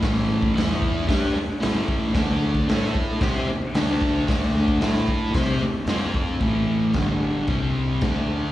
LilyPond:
<<
  \new Staff \with { instrumentName = "Distorted electric guitar" } { \time 4/4 \key d \major \tempo 4 = 113 <a, e a>4 <e b e'>4 <g d' g'>8 r8 <a, e a>4 | <d a d'>4 <a e' a'>4 <c' g' c''>8 r8 <d a d'>4 | <d a d'>4 <a e' a'>4 <c' g' c''>8 r8 <f c' f'>4 | <a, e a>4 <g, d g>4 <c g c'>4 <d a d'>4 | }
  \new Staff \with { instrumentName = "Fingered electric bass" } { \clef bass \time 4/4 \key d \major a,,4 e,4 g,8 r8 a,,4 | d,4 a,4 c8 r8 d,4 | d,4 a,4 c8 r8 f,4 | a,,4 g,,4 c,4 d,4 | }
  \new DrumStaff \with { instrumentName = "Drums" } \drummode { \time 4/4 <hho bd sn>8. bd16 <hho sn>8 bd8 <hho bd sn>4 <hho sn>8 bd8 | <hho bd sn>8. bd16 <hho sn>8 bd8 <hho bd sn>4 <hho sn>8 bd8 | <hho bd sn>8. bd16 <hho sn>8 bd8 <hho bd sn>4 <hho sn>8 bd8 | <cymc bd>4 <cymc bd sn>4 <cymc bd>4 <cymc bd sn>4 | }
>>